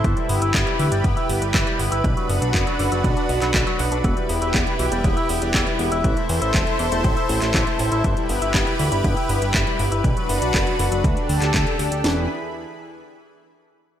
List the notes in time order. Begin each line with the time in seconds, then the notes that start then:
Already playing: E4
0.04 G1 E3 G4 B4, kick, closed hi-hat
0.17 G3, closed hi-hat
0.29 G1 B3, open hi-hat
0.42 G1 E4, closed hi-hat
0.54 G1 B3, kick, clap, closed hi-hat
0.67 G3, closed hi-hat
0.79 D2 E3, open hi-hat
0.92 G1 G3, closed hi-hat
1.04 G1 B3, kick, closed hi-hat
1.17 E4, closed hi-hat
1.29 G1 B3, open hi-hat
1.42 G1 G3, closed hi-hat
1.54 G1 E3, kick, clap, closed hi-hat
1.67 G3, closed hi-hat
1.79 G1 B3, open hi-hat
1.92 G1 E4, closed hi-hat
2.04 B1 D3 D4 F#4, kick, closed hi-hat
2.17 F#3, closed hi-hat
2.29 F#1 B3, open hi-hat
2.42 B1 D4, closed hi-hat
2.54 F#1 B3, kick, clap, closed hi-hat
2.67 F#3, closed hi-hat
2.79 F#1 D3, open hi-hat
2.92 F#1 F#3, closed hi-hat
3.04 B1 B3, kick, closed hi-hat
3.17 D4, closed hi-hat
3.29 B1 B3, open hi-hat
3.42 B1 F#3, clap, closed hi-hat
3.54 B1 D3, kick, clap, closed hi-hat
3.67 F#3, closed hi-hat
3.79 B1 B3, open hi-hat
3.92 B1 D4, closed hi-hat
4.04 E1 E3 E4 G4, kick, closed hi-hat
4.17 G3, closed hi-hat
4.29 E1 B3, open hi-hat
4.42 E1 E4, closed hi-hat
4.54 E1 B3, kick, clap, closed hi-hat
4.67 G3, closed hi-hat
4.79 B1 E3, open hi-hat
4.92 E1 G3, closed hi-hat
5.04 E1 B3, kick, closed hi-hat
5.17 E4, closed hi-hat
5.29 E1 B3, open hi-hat
5.42 E1 G3, closed hi-hat
5.54 E1 E3, kick, clap, closed hi-hat
5.67 G3, closed hi-hat
5.79 E1 B3, open hi-hat
5.92 E1 E4, closed hi-hat
6.04 A1 E3 A4 C5, kick, closed hi-hat
6.17 A3, closed hi-hat
6.29 E2 C4, open hi-hat
6.42 A1 E4, closed hi-hat
6.54 E1 C4, kick, clap, closed hi-hat
6.67 A3, closed hi-hat
6.79 E1 E3, open hi-hat
6.92 E1 A3, closed hi-hat
7.04 A1 C4, kick, closed hi-hat
7.17 E4, closed hi-hat
7.29 A1 C4, open hi-hat
7.42 A1 A3, clap, closed hi-hat
7.54 A1 E3, kick, clap, closed hi-hat
7.67 A3, closed hi-hat
7.79 A1 C4, open hi-hat
7.92 A1 E4, closed hi-hat
8.04 G1 E3 G4 B4, kick, closed hi-hat
8.17 G3, closed hi-hat
8.29 G1 B3, open hi-hat
8.42 G1 E4, closed hi-hat
8.54 G1 B3, kick, clap, closed hi-hat
8.67 G3, closed hi-hat
8.79 D2 E3, open hi-hat
8.92 G1 G3, closed hi-hat
9.04 G1 B3, kick, closed hi-hat
9.17 E4, closed hi-hat
9.29 G1 B3, open hi-hat
9.42 G1 G3, closed hi-hat
9.54 G1 E3, kick, clap, closed hi-hat
9.67 G3, closed hi-hat
9.79 G1 B3, open hi-hat
9.92 G1 E4, closed hi-hat
10.04 B1 D3 D4 F#4 B4, kick, closed hi-hat
10.17 F#3, closed hi-hat
10.29 F#1 B3, open hi-hat
10.42 B1 D4, closed hi-hat
10.54 F#1 B3, kick, clap, closed hi-hat
10.67 F#3, closed hi-hat
10.79 F#1 D3, open hi-hat
10.92 F#1 F#3, closed hi-hat
11.04 D2 A3 D4 G4 A4, kick, closed hi-hat
11.17 D4, closed hi-hat
11.29 D2 D4, open hi-hat
11.42 D2 G4, clap, closed hi-hat
11.54 D2 A3, kick, clap, closed hi-hat
11.67 D3, closed hi-hat
11.79 D2 D4, open hi-hat
11.92 D2 D4, closed hi-hat
12.04 E1 E3 E4 G#4 B4 B5, snare